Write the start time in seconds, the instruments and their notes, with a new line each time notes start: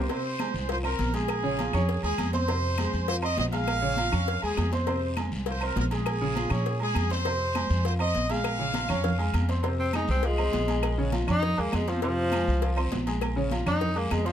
Already playing: trumpet section C5
0.09 grand piano C3 C4 C5, cowbell, high conga, low agogo, long guiro
0.24 high conga
0.39 grand piano G#3 G#4 G#5, cowbell, high conga, low agogo, short guiro, claves
0.54 upright bass C2, short guiro
0.69 grand piano F3 F4 F5, trumpet section C5, cowbell, high conga, low agogo, long guiro
0.83 grand piano C4 C5 C6, trumpet section A#4, high conga, low agogo, claves
0.99 upright bass A#1, cowbell, high conga, short guiro
1.14 grand piano G#3 G#4 G#5, trumpet section G#4, cowbell, high conga, low agogo, short guiro
1.28 cowbell, high conga, low agogo, long guiro, claves
1.43 grand piano C#3 C#4 C#5
1.58 grand piano F3 F4 F5, cowbell, high conga, low agogo, short guiro
1.73 upright bass F2, grand piano C#4 C#5 C#6, low conga, low agogo, short guiro, claves
1.89 cowbell, high conga, long guiro
2.03 upright bass D#2, grand piano G#3 G#4 G#5, trumpet section G#4, high conga, low agogo
2.18 upright bass F2, cowbell, high conga, low agogo, short guiro, claves
2.33 grand piano C4 C5 C6, trumpet section C5, cowbell, high conga, short guiro
2.48 grand piano C3 C4 C5, cowbell, high conga, low agogo, long guiro
2.64 high conga
2.78 grand piano G#3 G#4 G#5, cowbell, high conga, low agogo, short guiro, claves
2.93 upright bass F2, high conga, short guiro
3.08 grand piano F3 F4 F5, trumpet section C5, cowbell, high conga, low agogo, long guiro
3.22 grand piano C4 C5 C6, trumpet section D#5, high conga, low agogo, claves
3.37 upright bass A#1, trumpet section D#5, cowbell, high conga, low timbale, short guiro
3.52 grand piano G#3 G#4 G#5, trumpet section F5, cowbell, high conga, low agogo, short guiro
3.67 cowbell, high conga, low agogo, long guiro, claves
3.82 grand piano C#3 C#4 C#5
3.97 grand piano F3 F4 F5, cowbell, high conga, low agogo, short guiro
4.12 upright bass F2, grand piano C#4 C#5 C#6, low conga, low agogo, short guiro, claves
4.27 cowbell, high conga, long guiro
4.42 upright bass D#2, grand piano G#3 G#4 G#5, trumpet section G#4, high conga, low agogo
4.57 upright bass F2, cowbell, high conga, low timbale, low agogo, short guiro, claves
4.72 grand piano C4 C5 C6, trumpet section C5, cowbell, high conga, short guiro
4.87 grand piano C3 C4 C5, cowbell, high conga, low agogo, long guiro
5.02 high conga
5.16 grand piano G#3 G#4 G#5, cowbell, high conga, low agogo, short guiro, claves
5.32 upright bass C2, high conga, short guiro
5.46 grand piano F3 F4 F5, trumpet section C5, cowbell, high conga, low agogo, long guiro
5.61 grand piano C4 C5 C6, high conga, low agogo, claves
5.65 trumpet section A#4
5.76 upright bass A#1, trumpet section A#4, cowbell, high conga, low timbale, short guiro
5.91 grand piano G#3 G#4 G#5, trumpet section G#4, cowbell, high conga, low agogo, short guiro
6.06 cowbell, high conga, low agogo, long guiro, claves
6.21 grand piano C#3 C#4 C#5
6.35 grand piano F3 F4 F5, cowbell, high conga, low agogo, short guiro
6.50 upright bass A#2, grand piano C#4 C#5 C#6, low conga, low agogo, short guiro, claves
6.66 cowbell, long guiro
6.80 grand piano G#3 G#4 G#5, trumpet section G#4, high conga, low agogo
6.95 upright bass F2, cowbell, high conga, low agogo, short guiro, claves
7.10 grand piano C4 C5 C6, trumpet section C5, cowbell, short guiro
7.25 grand piano C3 C4 C5, cowbell, high conga, low agogo, long guiro
7.41 high conga
7.55 grand piano G#3 G#4 G#5, cowbell, high conga, low agogo, short guiro, claves
7.70 upright bass F2, high conga, short guiro
7.85 grand piano F3 F4 F5, trumpet section C5, cowbell, high conga, low agogo, long guiro
7.99 grand piano C4 C5 C6, trumpet section D#5, high conga, low agogo, claves
8.15 upright bass A#1, cowbell, high conga, short guiro
8.29 grand piano G#3 G#4 G#5, trumpet section F5, cowbell, high conga, low agogo, short guiro
8.44 cowbell, high conga, low agogo, long guiro, claves
8.59 grand piano C#3 C#4 C#5, high conga
8.74 grand piano F3 F4 F5, cowbell, high conga, low agogo, short guiro
8.88 upright bass F2, grand piano C#4 C#5 C#6, low conga, low agogo, short guiro, claves
9.04 cowbell, high conga, low conga, long guiro
9.18 grand piano G#3 G#4 G#5, high conga, low agogo
9.34 upright bass F2, cowbell, high conga, low agogo, short guiro, claves
9.48 grand piano C4 C5 C6, cowbell, short guiro
9.63 grand piano C3 C4 C5, cowbell, high conga, low agogo, long guiro
9.79 tenor saxophone C4, high conga
9.93 grand piano G#3 G#4 G#5, tenor saxophone D#4, cowbell, high conga, low agogo, short guiro, claves
10.08 upright bass C2, tenor saxophone C4, short guiro
10.23 grand piano F3 F4 F5, tenor saxophone G#3, cowbell, high conga, low agogo, long guiro
10.38 grand piano C4 C5 C6, high conga, low agogo, claves
10.53 upright bass A#1, cowbell, high conga, low timbale, short guiro
10.68 grand piano G#3 G#4 G#5, cowbell, high conga, low agogo, short guiro
10.83 cowbell, high conga, low agogo, long guiro, claves
10.98 grand piano C#3 C#4 C#5, high conga
11.12 grand piano F3 F4 F5, cowbell, high conga, low agogo, short guiro
11.27 upright bass F2, grand piano C#4 C#5 C#6, tenor saxophone D#4, low conga, low agogo, short guiro, claves
11.43 cowbell, high conga, low conga, long guiro
11.57 upright bass D#2, grand piano G#3 G#4 G#5, tenor saxophone A#3, low agogo
11.72 upright bass F2, tenor saxophone G#3, cowbell, high conga, low timbale, low agogo, short guiro, claves
11.88 tenor saxophone F3, grand piano C4 C5 C6, cowbell, high conga, short guiro
12.02 grand piano C3 C4 C5, tenor saxophone F3, cowbell, low agogo, long guiro
12.18 high conga
12.32 grand piano G#3 G#4 G#5, cowbell, high conga, low agogo, short guiro, claves
12.47 upright bass C2, high conga, short guiro
12.62 grand piano F3 F4 F5, cowbell, high conga, low agogo, long guiro
12.77 grand piano C4 C5 C6, high conga, low agogo, claves
12.92 upright bass A#1, cowbell, high conga, low timbale, short guiro
13.07 grand piano G#3 G#4 G#5, cowbell, high conga, low agogo, short guiro
13.21 cowbell, high conga, low agogo, long guiro, claves
13.36 grand piano C#3 C#4 C#5
13.51 grand piano F3 F4 F5, cowbell, high conga, low agogo, short guiro
13.66 upright bass F2, grand piano C#4 C#5 C#6, tenor saxophone D#4, low conga, low agogo, short guiro, claves
13.81 cowbell, high conga, low conga, long guiro
13.95 grand piano G#3 G#4 G#5, tenor saxophone A#3, high conga, low agogo
14.11 upright bass F2, tenor saxophone G#3, cowbell, high conga, low timbale, low agogo, short guiro, claves
14.26 tenor saxophone F3, grand piano C4 C5 C6, cowbell, high conga, short guiro